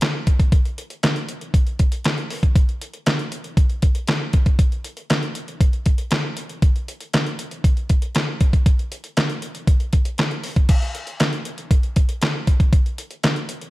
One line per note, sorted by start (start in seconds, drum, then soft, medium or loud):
0.01 snare loud
0.01 clap medium
0.01 closed hi-hat medium
0.27 kick loud
0.27 closed hi-hat medium
0.40 kick medium
0.40 closed hi-hat soft
0.52 kick loud
0.52 closed hi-hat medium
0.65 closed hi-hat soft
0.78 closed hi-hat medium
0.90 closed hi-hat soft
1.03 snare loud
1.03 clap medium
1.03 closed hi-hat loud
1.16 closed hi-hat soft
1.29 closed hi-hat medium
1.41 closed hi-hat soft
1.54 kick loud
1.54 closed hi-hat medium
1.67 closed hi-hat soft
1.79 kick medium
1.79 closed hi-hat medium
1.92 closed hi-hat medium
2.04 snare loud
2.04 clap medium
2.04 closed hi-hat medium
2.18 closed hi-hat soft
2.30 open hi-hat medium
2.43 kick medium
2.43 closed hi-hat soft
2.56 kick loud
2.56 closed hi-hat medium
2.69 closed hi-hat soft
2.81 closed hi-hat medium
2.94 closed hi-hat soft
3.06 snare loud
3.06 clap medium
3.06 closed hi-hat medium
3.19 closed hi-hat soft
3.32 closed hi-hat medium
3.44 closed hi-hat soft
3.57 kick loud
3.57 closed hi-hat medium
3.70 closed hi-hat soft
3.82 kick medium
3.82 closed hi-hat medium
3.95 closed hi-hat medium
4.08 snare loud
4.08 clap medium
4.08 closed hi-hat medium
4.33 kick loud
4.33 closed hi-hat medium
4.46 kick medium
4.46 closed hi-hat soft
4.59 kick loud
4.59 closed hi-hat medium
4.72 closed hi-hat soft
4.84 closed hi-hat medium
4.97 closed hi-hat soft
5.10 snare loud
5.10 clap medium
5.10 closed hi-hat medium
5.23 closed hi-hat soft
5.35 closed hi-hat medium
5.48 closed hi-hat soft
5.61 kick loud
5.61 closed hi-hat loud
5.73 closed hi-hat soft
5.86 kick medium
5.86 closed hi-hat medium
5.98 closed hi-hat medium
6.11 snare loud
6.11 clap medium
6.11 closed hi-hat medium
6.37 closed hi-hat medium
6.49 closed hi-hat soft
6.62 kick loud
6.62 closed hi-hat medium
6.76 closed hi-hat soft
6.88 closed hi-hat medium
7.01 closed hi-hat soft
7.14 snare loud
7.14 clap medium
7.14 closed hi-hat medium
7.27 closed hi-hat soft
7.39 closed hi-hat medium
7.51 closed hi-hat soft
7.64 kick loud
7.64 closed hi-hat medium
7.77 closed hi-hat soft
7.89 kick medium
7.89 closed hi-hat medium
8.02 closed hi-hat medium
8.15 snare loud
8.15 clap medium
8.15 closed hi-hat medium
8.41 kick loud
8.41 closed hi-hat medium
8.53 kick medium
8.53 closed hi-hat soft
8.66 kick loud
8.66 closed hi-hat medium
8.79 closed hi-hat soft
8.92 closed hi-hat medium
9.04 closed hi-hat soft
9.17 snare loud
9.17 clap medium
9.17 closed hi-hat loud
9.30 closed hi-hat soft
9.42 closed hi-hat medium
9.55 closed hi-hat soft
9.67 kick loud
9.67 closed hi-hat loud
9.80 closed hi-hat soft
9.93 kick medium
9.93 closed hi-hat medium
10.05 closed hi-hat medium
10.18 snare loud
10.18 clap medium
10.18 closed hi-hat medium
10.31 closed hi-hat soft
10.44 open hi-hat medium
10.56 kick medium
10.56 closed hi-hat soft
10.69 kick loud
10.69 closed hi-hat medium
10.69 crash loud
10.82 closed hi-hat soft
10.95 closed hi-hat medium
11.07 closed hi-hat soft
11.20 snare loud
11.20 clap loud
11.20 closed hi-hat medium
11.33 closed hi-hat soft
11.45 closed hi-hat medium
11.58 closed hi-hat soft
11.71 kick loud
11.71 closed hi-hat loud
11.83 closed hi-hat soft
11.96 kick medium
11.96 closed hi-hat medium
12.09 closed hi-hat medium
12.22 snare loud
12.22 clap loud
12.22 closed hi-hat medium
12.47 kick loud
12.47 closed hi-hat medium
12.60 kick loud
12.60 closed hi-hat soft
12.73 kick loud
12.73 closed hi-hat medium
12.86 closed hi-hat soft
12.98 closed hi-hat medium
13.11 closed hi-hat soft
13.23 snare loud
13.23 clap medium
13.23 closed hi-hat loud
13.36 closed hi-hat soft
13.49 closed hi-hat medium
13.61 closed hi-hat soft